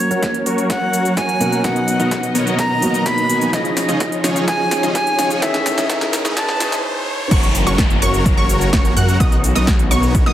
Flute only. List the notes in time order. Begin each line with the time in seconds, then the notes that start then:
Already playing: C#5
0.70 F#5
1.17 G#5
1.64 F#5
2.59 A#5
3.06 B5
3.53 D#5
4.48 G#5
4.95 G#5
5.42 E5
6.36 A5